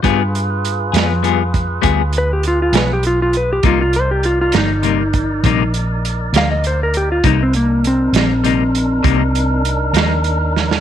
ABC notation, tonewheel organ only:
X:1
M:12/8
L:1/8
Q:3/8=67
K:Cm
V:1 name="Tonewheel organ"
[FA=B]12 | [EBd]12 | [E=E=B] [D_E_B]8- [DEB]3 |]